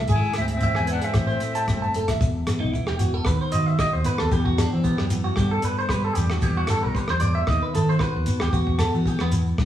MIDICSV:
0, 0, Header, 1, 9, 480
1, 0, Start_track
1, 0, Key_signature, 1, "minor"
1, 0, Tempo, 527241
1, 89, Time_signature, 4, 2, 24, 8
1, 8785, End_track
2, 0, Start_track
2, 0, Title_t, "Flute"
2, 0, Program_c, 0, 73
2, 92, Note_on_c, 0, 80, 91
2, 314, Note_off_c, 0, 80, 0
2, 339, Note_on_c, 0, 76, 81
2, 394, Note_off_c, 0, 76, 0
2, 477, Note_on_c, 0, 76, 85
2, 797, Note_off_c, 0, 76, 0
2, 825, Note_on_c, 0, 78, 89
2, 951, Note_on_c, 0, 76, 82
2, 964, Note_off_c, 0, 78, 0
2, 1779, Note_off_c, 0, 76, 0
2, 8785, End_track
3, 0, Start_track
3, 0, Title_t, "Clean electric guitar"
3, 0, Program_c, 1, 27
3, 83, Note_on_c, 1, 68, 79
3, 184, Note_off_c, 1, 68, 0
3, 576, Note_on_c, 1, 76, 85
3, 672, Note_off_c, 1, 76, 0
3, 691, Note_on_c, 1, 80, 72
3, 782, Note_off_c, 1, 80, 0
3, 789, Note_on_c, 1, 71, 74
3, 896, Note_off_c, 1, 71, 0
3, 924, Note_on_c, 1, 68, 57
3, 1018, Note_off_c, 1, 68, 0
3, 1157, Note_on_c, 1, 72, 69
3, 1254, Note_off_c, 1, 72, 0
3, 1413, Note_on_c, 1, 81, 68
3, 1504, Note_off_c, 1, 81, 0
3, 1658, Note_on_c, 1, 81, 60
3, 1747, Note_off_c, 1, 81, 0
3, 1784, Note_on_c, 1, 69, 66
3, 1878, Note_off_c, 1, 69, 0
3, 1893, Note_on_c, 1, 76, 75
3, 1984, Note_off_c, 1, 76, 0
3, 2370, Note_on_c, 1, 63, 81
3, 2480, Note_off_c, 1, 63, 0
3, 2480, Note_on_c, 1, 64, 88
3, 2609, Note_off_c, 1, 64, 0
3, 2617, Note_on_c, 1, 67, 108
3, 2718, Note_off_c, 1, 67, 0
3, 2721, Note_on_c, 1, 66, 84
3, 2857, Note_off_c, 1, 66, 0
3, 2857, Note_on_c, 1, 69, 76
3, 2969, Note_off_c, 1, 69, 0
3, 2971, Note_on_c, 1, 71, 84
3, 3095, Note_off_c, 1, 71, 0
3, 3105, Note_on_c, 1, 72, 71
3, 3206, Note_on_c, 1, 75, 91
3, 3213, Note_off_c, 1, 72, 0
3, 3334, Note_off_c, 1, 75, 0
3, 3334, Note_on_c, 1, 76, 105
3, 3447, Note_off_c, 1, 76, 0
3, 3453, Note_on_c, 1, 75, 99
3, 3578, Note_off_c, 1, 75, 0
3, 3578, Note_on_c, 1, 72, 81
3, 3689, Note_off_c, 1, 72, 0
3, 3696, Note_on_c, 1, 71, 94
3, 3817, Note_off_c, 1, 71, 0
3, 3820, Note_on_c, 1, 69, 87
3, 3929, Note_off_c, 1, 69, 0
3, 3933, Note_on_c, 1, 67, 92
3, 4048, Note_off_c, 1, 67, 0
3, 4052, Note_on_c, 1, 66, 82
3, 4165, Note_off_c, 1, 66, 0
3, 4172, Note_on_c, 1, 62, 91
3, 4295, Note_off_c, 1, 62, 0
3, 4305, Note_on_c, 1, 60, 77
3, 4405, Note_on_c, 1, 59, 86
3, 4412, Note_off_c, 1, 60, 0
3, 4531, Note_off_c, 1, 59, 0
3, 4536, Note_on_c, 1, 55, 74
3, 4605, Note_off_c, 1, 55, 0
3, 4772, Note_on_c, 1, 66, 86
3, 4879, Note_off_c, 1, 66, 0
3, 4882, Note_on_c, 1, 67, 80
3, 5009, Note_off_c, 1, 67, 0
3, 5019, Note_on_c, 1, 69, 79
3, 5129, Note_off_c, 1, 69, 0
3, 5142, Note_on_c, 1, 71, 80
3, 5260, Note_off_c, 1, 71, 0
3, 5267, Note_on_c, 1, 72, 94
3, 5371, Note_off_c, 1, 72, 0
3, 5375, Note_on_c, 1, 71, 89
3, 5496, Note_off_c, 1, 71, 0
3, 5503, Note_on_c, 1, 69, 81
3, 5604, Note_off_c, 1, 69, 0
3, 5604, Note_on_c, 1, 67, 85
3, 5741, Note_off_c, 1, 67, 0
3, 5741, Note_on_c, 1, 66, 96
3, 5852, Note_off_c, 1, 66, 0
3, 5852, Note_on_c, 1, 67, 106
3, 5974, Note_off_c, 1, 67, 0
3, 5984, Note_on_c, 1, 66, 94
3, 6091, Note_off_c, 1, 66, 0
3, 6101, Note_on_c, 1, 69, 98
3, 6219, Note_off_c, 1, 69, 0
3, 6219, Note_on_c, 1, 70, 87
3, 6322, Note_off_c, 1, 70, 0
3, 6322, Note_on_c, 1, 71, 98
3, 6449, Note_off_c, 1, 71, 0
3, 6466, Note_on_c, 1, 72, 92
3, 6559, Note_off_c, 1, 72, 0
3, 6562, Note_on_c, 1, 74, 104
3, 6687, Note_off_c, 1, 74, 0
3, 6691, Note_on_c, 1, 76, 109
3, 6804, Note_off_c, 1, 76, 0
3, 6816, Note_on_c, 1, 75, 80
3, 6936, Note_off_c, 1, 75, 0
3, 6941, Note_on_c, 1, 71, 88
3, 7049, Note_off_c, 1, 71, 0
3, 7058, Note_on_c, 1, 69, 93
3, 7176, Note_off_c, 1, 69, 0
3, 7185, Note_on_c, 1, 72, 96
3, 7284, Note_off_c, 1, 72, 0
3, 7288, Note_on_c, 1, 71, 89
3, 7629, Note_off_c, 1, 71, 0
3, 7661, Note_on_c, 1, 67, 90
3, 7764, Note_off_c, 1, 67, 0
3, 7768, Note_on_c, 1, 66, 86
3, 8001, Note_off_c, 1, 66, 0
3, 8004, Note_on_c, 1, 69, 97
3, 8146, Note_off_c, 1, 69, 0
3, 8146, Note_on_c, 1, 66, 92
3, 8261, Note_off_c, 1, 66, 0
3, 8261, Note_on_c, 1, 67, 100
3, 8378, Note_off_c, 1, 67, 0
3, 8386, Note_on_c, 1, 59, 96
3, 8451, Note_off_c, 1, 59, 0
3, 8785, End_track
4, 0, Start_track
4, 0, Title_t, "Tenor saxophone"
4, 0, Program_c, 2, 66
4, 138, Note_on_c, 2, 64, 73
4, 339, Note_off_c, 2, 64, 0
4, 374, Note_on_c, 2, 60, 68
4, 421, Note_off_c, 2, 60, 0
4, 507, Note_on_c, 2, 60, 71
4, 813, Note_off_c, 2, 60, 0
4, 838, Note_on_c, 2, 62, 70
4, 965, Note_on_c, 2, 60, 62
4, 979, Note_off_c, 2, 62, 0
4, 1786, Note_off_c, 2, 60, 0
4, 8785, End_track
5, 0, Start_track
5, 0, Title_t, "Clean electric guitar"
5, 0, Program_c, 3, 27
5, 0, Note_on_c, 3, 52, 59
5, 0, Note_on_c, 3, 64, 64
5, 70, Note_on_c, 3, 44, 63
5, 311, Note_on_c, 3, 56, 51
5, 555, Note_off_c, 3, 52, 0
5, 558, Note_on_c, 3, 52, 57
5, 815, Note_on_c, 3, 59, 50
5, 1015, Note_off_c, 3, 44, 0
5, 1015, Note_off_c, 3, 56, 0
5, 1018, Note_off_c, 3, 52, 0
5, 1040, Note_on_c, 3, 45, 72
5, 1048, Note_off_c, 3, 59, 0
5, 1052, Note_on_c, 3, 60, 50
5, 1301, Note_on_c, 3, 57, 57
5, 1541, Note_on_c, 3, 43, 60
5, 1773, Note_off_c, 3, 43, 0
5, 1776, Note_on_c, 3, 42, 57
5, 1986, Note_off_c, 3, 60, 0
5, 1990, Note_off_c, 3, 57, 0
5, 2007, Note_off_c, 3, 45, 0
5, 2015, Note_off_c, 3, 42, 0
5, 2023, Note_on_c, 3, 40, 69
5, 2026, Note_off_c, 3, 64, 0
5, 2261, Note_on_c, 3, 59, 54
5, 2507, Note_off_c, 3, 59, 0
5, 2510, Note_on_c, 3, 59, 54
5, 2729, Note_on_c, 3, 52, 61
5, 2738, Note_off_c, 3, 59, 0
5, 2742, Note_on_c, 3, 59, 56
5, 2944, Note_off_c, 3, 52, 0
5, 2972, Note_on_c, 3, 51, 69
5, 2979, Note_off_c, 3, 40, 0
5, 3227, Note_on_c, 3, 66, 73
5, 3446, Note_off_c, 3, 66, 0
5, 3457, Note_on_c, 3, 66, 74
5, 3678, Note_off_c, 3, 66, 0
5, 3681, Note_off_c, 3, 59, 0
5, 3681, Note_on_c, 3, 59, 64
5, 3689, Note_on_c, 3, 66, 66
5, 3904, Note_off_c, 3, 66, 0
5, 3905, Note_off_c, 3, 51, 0
5, 3920, Note_on_c, 3, 40, 74
5, 3933, Note_on_c, 3, 52, 60
5, 3942, Note_off_c, 3, 59, 0
5, 3942, Note_on_c, 3, 59, 63
5, 4171, Note_off_c, 3, 59, 0
5, 4410, Note_on_c, 3, 67, 62
5, 4641, Note_off_c, 3, 52, 0
5, 4652, Note_on_c, 3, 52, 69
5, 4665, Note_on_c, 3, 59, 56
5, 4863, Note_off_c, 3, 67, 0
5, 4865, Note_off_c, 3, 52, 0
5, 4886, Note_off_c, 3, 40, 0
5, 4898, Note_on_c, 3, 43, 79
5, 4904, Note_on_c, 3, 50, 60
5, 4907, Note_off_c, 3, 59, 0
5, 4907, Note_on_c, 3, 59, 64
5, 4915, Note_on_c, 3, 62, 69
5, 5110, Note_off_c, 3, 62, 0
5, 5121, Note_on_c, 3, 62, 68
5, 5369, Note_on_c, 3, 67, 73
5, 5606, Note_off_c, 3, 62, 0
5, 5608, Note_off_c, 3, 50, 0
5, 5618, Note_on_c, 3, 50, 69
5, 5628, Note_on_c, 3, 62, 61
5, 5822, Note_off_c, 3, 67, 0
5, 5827, Note_off_c, 3, 43, 0
5, 5832, Note_off_c, 3, 62, 0
5, 5855, Note_off_c, 3, 50, 0
5, 5863, Note_off_c, 3, 59, 0
5, 5863, Note_on_c, 3, 52, 67
5, 5866, Note_on_c, 3, 55, 60
5, 5870, Note_on_c, 3, 59, 61
5, 6099, Note_off_c, 3, 59, 0
5, 6103, Note_on_c, 3, 59, 56
5, 6336, Note_on_c, 3, 67, 61
5, 6562, Note_off_c, 3, 52, 0
5, 6573, Note_on_c, 3, 52, 64
5, 6577, Note_off_c, 3, 59, 0
5, 6580, Note_on_c, 3, 59, 58
5, 6784, Note_off_c, 3, 52, 0
5, 6786, Note_off_c, 3, 67, 0
5, 6804, Note_on_c, 3, 51, 88
5, 6818, Note_off_c, 3, 55, 0
5, 7046, Note_on_c, 3, 64, 79
5, 7183, Note_off_c, 3, 64, 0
5, 7183, Note_on_c, 3, 66, 53
5, 7280, Note_off_c, 3, 66, 0
5, 7291, Note_on_c, 3, 66, 71
5, 7523, Note_off_c, 3, 66, 0
5, 7530, Note_off_c, 3, 59, 0
5, 7530, Note_on_c, 3, 59, 70
5, 7536, Note_on_c, 3, 66, 65
5, 7739, Note_off_c, 3, 51, 0
5, 7745, Note_off_c, 3, 66, 0
5, 8011, Note_off_c, 3, 59, 0
5, 8011, Note_on_c, 3, 59, 62
5, 8250, Note_off_c, 3, 59, 0
5, 8253, Note_on_c, 3, 59, 56
5, 8484, Note_off_c, 3, 59, 0
5, 8486, Note_on_c, 3, 52, 62
5, 8701, Note_off_c, 3, 52, 0
5, 8735, Note_on_c, 3, 43, 82
5, 8785, Note_off_c, 3, 43, 0
5, 8785, End_track
6, 0, Start_track
6, 0, Title_t, "Fingered electric bass"
6, 0, Program_c, 4, 33
6, 77, Note_on_c, 4, 32, 91
6, 180, Note_off_c, 4, 32, 0
6, 339, Note_on_c, 4, 38, 70
6, 619, Note_off_c, 4, 38, 0
6, 711, Note_on_c, 4, 40, 78
6, 892, Note_off_c, 4, 40, 0
6, 1040, Note_on_c, 4, 33, 92
6, 1230, Note_off_c, 4, 33, 0
6, 1526, Note_on_c, 4, 30, 60
6, 1714, Note_off_c, 4, 30, 0
6, 1779, Note_on_c, 4, 30, 77
6, 1962, Note_off_c, 4, 30, 0
6, 2013, Note_on_c, 4, 28, 108
6, 2198, Note_off_c, 4, 28, 0
6, 2395, Note_on_c, 4, 35, 92
6, 2476, Note_off_c, 4, 35, 0
6, 2633, Note_on_c, 4, 28, 96
6, 2901, Note_off_c, 4, 28, 0
6, 2969, Note_on_c, 4, 39, 96
6, 3068, Note_off_c, 4, 39, 0
6, 3236, Note_on_c, 4, 51, 86
6, 3412, Note_off_c, 4, 51, 0
6, 3595, Note_on_c, 4, 39, 105
6, 3677, Note_off_c, 4, 39, 0
6, 3835, Note_on_c, 4, 39, 88
6, 3916, Note_off_c, 4, 39, 0
6, 3930, Note_on_c, 4, 40, 89
6, 4214, Note_off_c, 4, 40, 0
6, 4313, Note_on_c, 4, 52, 97
6, 4492, Note_off_c, 4, 52, 0
6, 4559, Note_on_c, 4, 42, 87
6, 4824, Note_off_c, 4, 42, 0
6, 4884, Note_on_c, 4, 43, 114
6, 5072, Note_off_c, 4, 43, 0
6, 5368, Note_on_c, 4, 43, 95
6, 5554, Note_off_c, 4, 43, 0
6, 5613, Note_on_c, 4, 40, 102
6, 5797, Note_off_c, 4, 40, 0
6, 5848, Note_on_c, 4, 40, 106
6, 6034, Note_off_c, 4, 40, 0
6, 6232, Note_on_c, 4, 35, 89
6, 6314, Note_off_c, 4, 35, 0
6, 6466, Note_on_c, 4, 40, 98
6, 6735, Note_off_c, 4, 40, 0
6, 6811, Note_on_c, 4, 39, 97
6, 6908, Note_off_c, 4, 39, 0
6, 7057, Note_on_c, 4, 51, 87
6, 7240, Note_off_c, 4, 51, 0
6, 7433, Note_on_c, 4, 39, 106
6, 7514, Note_off_c, 4, 39, 0
6, 7659, Note_on_c, 4, 39, 90
6, 7746, Note_off_c, 4, 39, 0
6, 7764, Note_on_c, 4, 40, 100
6, 8049, Note_off_c, 4, 40, 0
6, 8142, Note_on_c, 4, 52, 98
6, 8325, Note_off_c, 4, 52, 0
6, 8386, Note_on_c, 4, 40, 89
6, 8655, Note_off_c, 4, 40, 0
6, 8728, Note_on_c, 4, 43, 111
6, 8785, Note_off_c, 4, 43, 0
6, 8785, End_track
7, 0, Start_track
7, 0, Title_t, "Muted clean electric guitar strokes"
7, 1033, Note_on_c, 9, 29, 76
7, 1124, Note_off_c, 9, 29, 0
7, 4175, Note_on_c, 9, 29, 60
7, 4266, Note_off_c, 9, 29, 0
7, 5858, Note_on_c, 9, 29, 73
7, 5949, Note_off_c, 9, 29, 0
7, 7760, Note_on_c, 9, 29, 81
7, 7851, Note_off_c, 9, 29, 0
7, 8488, Note_on_c, 9, 29, 59
7, 8579, Note_off_c, 9, 29, 0
7, 8785, End_track
8, 0, Start_track
8, 0, Title_t, "Shekere"
8, 83, Note_on_c, 9, 82, 89
8, 174, Note_off_c, 9, 82, 0
8, 211, Note_on_c, 9, 82, 29
8, 302, Note_off_c, 9, 82, 0
8, 339, Note_on_c, 9, 82, 69
8, 430, Note_off_c, 9, 82, 0
8, 465, Note_on_c, 9, 82, 28
8, 557, Note_off_c, 9, 82, 0
8, 566, Note_on_c, 9, 82, 88
8, 657, Note_off_c, 9, 82, 0
8, 705, Note_on_c, 9, 82, 29
8, 796, Note_off_c, 9, 82, 0
8, 814, Note_on_c, 9, 82, 72
8, 905, Note_off_c, 9, 82, 0
8, 931, Note_on_c, 9, 82, 25
8, 1022, Note_off_c, 9, 82, 0
8, 1048, Note_on_c, 9, 82, 89
8, 1139, Note_off_c, 9, 82, 0
8, 1180, Note_on_c, 9, 82, 27
8, 1271, Note_off_c, 9, 82, 0
8, 1292, Note_on_c, 9, 82, 71
8, 1383, Note_off_c, 9, 82, 0
8, 1413, Note_on_c, 9, 82, 24
8, 1504, Note_off_c, 9, 82, 0
8, 1533, Note_on_c, 9, 82, 89
8, 1624, Note_off_c, 9, 82, 0
8, 1665, Note_on_c, 9, 82, 23
8, 1756, Note_off_c, 9, 82, 0
8, 1765, Note_on_c, 9, 82, 53
8, 1856, Note_off_c, 9, 82, 0
8, 1891, Note_on_c, 9, 82, 25
8, 1982, Note_off_c, 9, 82, 0
8, 2013, Note_on_c, 9, 82, 77
8, 2104, Note_off_c, 9, 82, 0
8, 2259, Note_on_c, 9, 82, 106
8, 2350, Note_off_c, 9, 82, 0
8, 2500, Note_on_c, 9, 82, 70
8, 2591, Note_off_c, 9, 82, 0
8, 2728, Note_on_c, 9, 82, 114
8, 2819, Note_off_c, 9, 82, 0
8, 2974, Note_on_c, 9, 82, 75
8, 3065, Note_off_c, 9, 82, 0
8, 3216, Note_on_c, 9, 82, 93
8, 3307, Note_off_c, 9, 82, 0
8, 3347, Note_on_c, 9, 82, 29
8, 3438, Note_off_c, 9, 82, 0
8, 3451, Note_on_c, 9, 82, 81
8, 3542, Note_off_c, 9, 82, 0
8, 3694, Note_on_c, 9, 82, 89
8, 3785, Note_off_c, 9, 82, 0
8, 3826, Note_on_c, 9, 82, 29
8, 3917, Note_off_c, 9, 82, 0
8, 3930, Note_on_c, 9, 82, 75
8, 4021, Note_off_c, 9, 82, 0
8, 4171, Note_on_c, 9, 82, 103
8, 4262, Note_off_c, 9, 82, 0
8, 4408, Note_on_c, 9, 82, 69
8, 4499, Note_off_c, 9, 82, 0
8, 4643, Note_on_c, 9, 82, 101
8, 4734, Note_off_c, 9, 82, 0
8, 4895, Note_on_c, 9, 82, 82
8, 4986, Note_off_c, 9, 82, 0
8, 5128, Note_on_c, 9, 82, 91
8, 5219, Note_off_c, 9, 82, 0
8, 5276, Note_on_c, 9, 82, 31
8, 5367, Note_off_c, 9, 82, 0
8, 5380, Note_on_c, 9, 82, 78
8, 5471, Note_off_c, 9, 82, 0
8, 5614, Note_on_c, 9, 82, 96
8, 5705, Note_off_c, 9, 82, 0
8, 5747, Note_on_c, 9, 82, 26
8, 5838, Note_off_c, 9, 82, 0
8, 5841, Note_on_c, 9, 82, 78
8, 5932, Note_off_c, 9, 82, 0
8, 6095, Note_on_c, 9, 82, 113
8, 6186, Note_off_c, 9, 82, 0
8, 6337, Note_on_c, 9, 82, 71
8, 6428, Note_off_c, 9, 82, 0
8, 6575, Note_on_c, 9, 82, 117
8, 6666, Note_off_c, 9, 82, 0
8, 6830, Note_on_c, 9, 82, 77
8, 6921, Note_off_c, 9, 82, 0
8, 7072, Note_on_c, 9, 82, 97
8, 7163, Note_off_c, 9, 82, 0
8, 7197, Note_on_c, 9, 82, 30
8, 7288, Note_off_c, 9, 82, 0
8, 7296, Note_on_c, 9, 82, 76
8, 7388, Note_off_c, 9, 82, 0
8, 7531, Note_on_c, 9, 82, 88
8, 7623, Note_off_c, 9, 82, 0
8, 7656, Note_on_c, 9, 82, 32
8, 7747, Note_off_c, 9, 82, 0
8, 7769, Note_on_c, 9, 82, 74
8, 7860, Note_off_c, 9, 82, 0
8, 8008, Note_on_c, 9, 82, 94
8, 8099, Note_off_c, 9, 82, 0
8, 8141, Note_on_c, 9, 82, 34
8, 8232, Note_off_c, 9, 82, 0
8, 8255, Note_on_c, 9, 82, 71
8, 8346, Note_off_c, 9, 82, 0
8, 8484, Note_on_c, 9, 82, 95
8, 8575, Note_off_c, 9, 82, 0
8, 8617, Note_on_c, 9, 82, 30
8, 8708, Note_off_c, 9, 82, 0
8, 8726, Note_on_c, 9, 82, 75
8, 8785, Note_off_c, 9, 82, 0
8, 8785, End_track
9, 0, Start_track
9, 0, Title_t, "Drums"
9, 69, Note_on_c, 9, 42, 41
9, 76, Note_on_c, 9, 36, 75
9, 160, Note_off_c, 9, 42, 0
9, 167, Note_off_c, 9, 36, 0
9, 305, Note_on_c, 9, 37, 62
9, 305, Note_on_c, 9, 42, 47
9, 396, Note_off_c, 9, 37, 0
9, 396, Note_off_c, 9, 42, 0
9, 436, Note_on_c, 9, 42, 45
9, 527, Note_off_c, 9, 42, 0
9, 551, Note_on_c, 9, 42, 38
9, 559, Note_on_c, 9, 36, 52
9, 642, Note_off_c, 9, 42, 0
9, 650, Note_off_c, 9, 36, 0
9, 683, Note_on_c, 9, 37, 53
9, 774, Note_off_c, 9, 37, 0
9, 794, Note_on_c, 9, 42, 49
9, 885, Note_off_c, 9, 42, 0
9, 925, Note_on_c, 9, 42, 48
9, 1016, Note_off_c, 9, 42, 0
9, 1035, Note_on_c, 9, 37, 66
9, 1035, Note_on_c, 9, 42, 47
9, 1041, Note_on_c, 9, 36, 77
9, 1126, Note_off_c, 9, 37, 0
9, 1126, Note_off_c, 9, 42, 0
9, 1132, Note_off_c, 9, 36, 0
9, 1277, Note_on_c, 9, 42, 50
9, 1369, Note_off_c, 9, 42, 0
9, 1411, Note_on_c, 9, 42, 53
9, 1502, Note_off_c, 9, 42, 0
9, 1528, Note_on_c, 9, 36, 60
9, 1528, Note_on_c, 9, 37, 60
9, 1528, Note_on_c, 9, 42, 45
9, 1619, Note_off_c, 9, 37, 0
9, 1619, Note_off_c, 9, 42, 0
9, 1620, Note_off_c, 9, 36, 0
9, 1770, Note_on_c, 9, 42, 46
9, 1861, Note_off_c, 9, 42, 0
9, 1894, Note_on_c, 9, 37, 67
9, 1894, Note_on_c, 9, 42, 51
9, 1897, Note_on_c, 9, 36, 62
9, 1985, Note_off_c, 9, 37, 0
9, 1985, Note_off_c, 9, 42, 0
9, 1988, Note_off_c, 9, 36, 0
9, 2010, Note_on_c, 9, 36, 101
9, 2101, Note_off_c, 9, 36, 0
9, 2247, Note_on_c, 9, 37, 75
9, 2247, Note_on_c, 9, 42, 56
9, 2338, Note_off_c, 9, 37, 0
9, 2338, Note_off_c, 9, 42, 0
9, 2490, Note_on_c, 9, 36, 57
9, 2581, Note_off_c, 9, 36, 0
9, 2611, Note_on_c, 9, 37, 64
9, 2702, Note_off_c, 9, 37, 0
9, 2725, Note_on_c, 9, 42, 52
9, 2816, Note_off_c, 9, 42, 0
9, 2956, Note_on_c, 9, 37, 74
9, 2967, Note_on_c, 9, 36, 89
9, 3047, Note_off_c, 9, 37, 0
9, 3058, Note_off_c, 9, 36, 0
9, 3202, Note_on_c, 9, 42, 52
9, 3293, Note_off_c, 9, 42, 0
9, 3448, Note_on_c, 9, 37, 71
9, 3449, Note_on_c, 9, 36, 71
9, 3539, Note_off_c, 9, 37, 0
9, 3540, Note_off_c, 9, 36, 0
9, 3682, Note_on_c, 9, 42, 52
9, 3773, Note_off_c, 9, 42, 0
9, 3809, Note_on_c, 9, 37, 74
9, 3900, Note_off_c, 9, 37, 0
9, 3929, Note_on_c, 9, 36, 89
9, 4020, Note_off_c, 9, 36, 0
9, 4058, Note_on_c, 9, 36, 66
9, 4149, Note_off_c, 9, 36, 0
9, 4173, Note_on_c, 9, 37, 73
9, 4173, Note_on_c, 9, 42, 54
9, 4264, Note_off_c, 9, 37, 0
9, 4264, Note_off_c, 9, 42, 0
9, 4411, Note_on_c, 9, 36, 62
9, 4502, Note_off_c, 9, 36, 0
9, 4537, Note_on_c, 9, 37, 63
9, 4628, Note_off_c, 9, 37, 0
9, 4646, Note_on_c, 9, 42, 61
9, 4737, Note_off_c, 9, 42, 0
9, 4878, Note_on_c, 9, 37, 62
9, 4887, Note_on_c, 9, 36, 91
9, 4969, Note_off_c, 9, 37, 0
9, 4978, Note_off_c, 9, 36, 0
9, 5119, Note_on_c, 9, 42, 54
9, 5210, Note_off_c, 9, 42, 0
9, 5360, Note_on_c, 9, 37, 69
9, 5365, Note_on_c, 9, 36, 64
9, 5451, Note_off_c, 9, 37, 0
9, 5456, Note_off_c, 9, 36, 0
9, 5601, Note_on_c, 9, 42, 61
9, 5692, Note_off_c, 9, 42, 0
9, 5732, Note_on_c, 9, 37, 74
9, 5823, Note_off_c, 9, 37, 0
9, 5846, Note_on_c, 9, 36, 90
9, 5938, Note_off_c, 9, 36, 0
9, 6074, Note_on_c, 9, 37, 76
9, 6074, Note_on_c, 9, 42, 49
9, 6165, Note_off_c, 9, 37, 0
9, 6165, Note_off_c, 9, 42, 0
9, 6324, Note_on_c, 9, 36, 69
9, 6415, Note_off_c, 9, 36, 0
9, 6443, Note_on_c, 9, 37, 62
9, 6534, Note_off_c, 9, 37, 0
9, 6554, Note_on_c, 9, 42, 54
9, 6645, Note_off_c, 9, 42, 0
9, 6801, Note_on_c, 9, 37, 74
9, 6806, Note_on_c, 9, 36, 88
9, 6892, Note_off_c, 9, 37, 0
9, 6897, Note_off_c, 9, 36, 0
9, 7053, Note_on_c, 9, 42, 52
9, 7144, Note_off_c, 9, 42, 0
9, 7277, Note_on_c, 9, 37, 64
9, 7284, Note_on_c, 9, 36, 72
9, 7368, Note_off_c, 9, 37, 0
9, 7375, Note_off_c, 9, 36, 0
9, 7520, Note_on_c, 9, 42, 50
9, 7611, Note_off_c, 9, 42, 0
9, 7647, Note_on_c, 9, 37, 78
9, 7738, Note_off_c, 9, 37, 0
9, 7765, Note_on_c, 9, 36, 81
9, 7856, Note_off_c, 9, 36, 0
9, 7892, Note_on_c, 9, 36, 68
9, 7983, Note_off_c, 9, 36, 0
9, 7999, Note_on_c, 9, 37, 70
9, 7999, Note_on_c, 9, 42, 47
9, 8091, Note_off_c, 9, 37, 0
9, 8091, Note_off_c, 9, 42, 0
9, 8244, Note_on_c, 9, 36, 65
9, 8335, Note_off_c, 9, 36, 0
9, 8365, Note_on_c, 9, 37, 64
9, 8456, Note_off_c, 9, 37, 0
9, 8481, Note_on_c, 9, 42, 58
9, 8572, Note_off_c, 9, 42, 0
9, 8724, Note_on_c, 9, 36, 89
9, 8725, Note_on_c, 9, 37, 62
9, 8785, Note_off_c, 9, 36, 0
9, 8785, Note_off_c, 9, 37, 0
9, 8785, End_track
0, 0, End_of_file